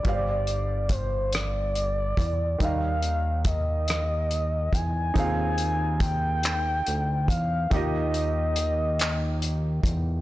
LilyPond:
<<
  \new Staff \with { instrumentName = "Soft synth lead" } { \time 6/8 \key ees \major \tempo 4. = 47 d''4 c''8 d''4. | f''4 ees''4. aes''8~ | aes''4 g''4. f''8 | ees''2~ ees''8 r8 | }
  \new Staff \with { instrumentName = "Grand piano" } { \time 6/8 \key ees \major <g g' ces'' c'' d'' f''>2. | <ees g ees' ees'' f''>2. | <c' ees' f' aes' f''>2. | <ees ees' f' g' ees''>2. | }
  \new Staff \with { instrumentName = "Analog synth bass" } { \clef bass \time 6/8 \key ees \major g,,2~ g,,8 fes,8 | ees,2~ ees,8 fes,8 | ees,2 d,8 fes,8 | ees,2~ ees,8 fes,8 | }
  \new DrumStaff \with { instrumentName = "Drums" } \drummode { \time 6/8 <hh bd>8 hh8 <hh bd>8 <hh ss>8 hh8 <hh bd>8 | <hh bd>8 hh8 <hh bd>8 <hh ss>8 hh8 <hh bd>8 | <hh bd>8 hh8 <hh bd>8 <hc hh>8 hh8 <hh bd>8 | <hh bd>8 hh8 hh8 <hc hh>8 hh8 <hh bd>8 | }
>>